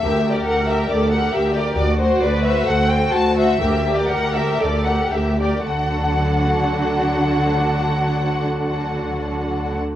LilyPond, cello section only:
\new Staff \with { instrumentName = "Cello section" } { \clef bass \time 4/4 \key d \major \tempo 4 = 118 d,4 d,4 d,4 d,4 | d,4 d,4 d,4 d,4 | d,4 d,4 d,4 d,4 | d1~ |
d1 | }